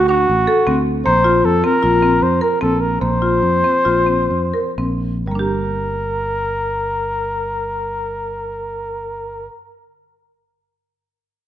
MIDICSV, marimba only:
0, 0, Header, 1, 2, 480
1, 0, Start_track
1, 0, Key_signature, -2, "minor"
1, 0, Tempo, 387847
1, 1304, Time_signature, 5, 2, 24, 8
1, 3233, Tempo, 408441
1, 4193, Tempo, 436999
1, 5153, Tempo, 491400
1, 12155, End_track
2, 0, Start_track
2, 0, Title_t, "Marimba"
2, 0, Program_c, 0, 12
2, 113, Note_on_c, 0, 62, 54
2, 463, Note_off_c, 0, 62, 0
2, 586, Note_on_c, 0, 69, 63
2, 762, Note_off_c, 0, 69, 0
2, 826, Note_on_c, 0, 60, 60
2, 1178, Note_off_c, 0, 60, 0
2, 1308, Note_on_c, 0, 58, 68
2, 1483, Note_off_c, 0, 58, 0
2, 1539, Note_on_c, 0, 65, 61
2, 1894, Note_off_c, 0, 65, 0
2, 2027, Note_on_c, 0, 60, 59
2, 2203, Note_off_c, 0, 60, 0
2, 2260, Note_on_c, 0, 65, 63
2, 2439, Note_off_c, 0, 65, 0
2, 2505, Note_on_c, 0, 60, 57
2, 2861, Note_off_c, 0, 60, 0
2, 2986, Note_on_c, 0, 70, 58
2, 3168, Note_off_c, 0, 70, 0
2, 3230, Note_on_c, 0, 60, 58
2, 3580, Note_off_c, 0, 60, 0
2, 3705, Note_on_c, 0, 58, 61
2, 3883, Note_off_c, 0, 58, 0
2, 3947, Note_on_c, 0, 65, 54
2, 4303, Note_off_c, 0, 65, 0
2, 4426, Note_on_c, 0, 60, 48
2, 4601, Note_off_c, 0, 60, 0
2, 4656, Note_on_c, 0, 65, 56
2, 4837, Note_off_c, 0, 65, 0
2, 4890, Note_on_c, 0, 60, 48
2, 5253, Note_off_c, 0, 60, 0
2, 5380, Note_on_c, 0, 70, 48
2, 5551, Note_off_c, 0, 70, 0
2, 5620, Note_on_c, 0, 60, 53
2, 5970, Note_off_c, 0, 60, 0
2, 6102, Note_on_c, 0, 55, 44
2, 6140, Note_on_c, 0, 58, 44
2, 6178, Note_on_c, 0, 62, 41
2, 6217, Note_on_c, 0, 67, 46
2, 10219, Note_off_c, 0, 55, 0
2, 10257, Note_off_c, 0, 58, 0
2, 10295, Note_off_c, 0, 62, 0
2, 10334, Note_off_c, 0, 67, 0
2, 12155, End_track
0, 0, End_of_file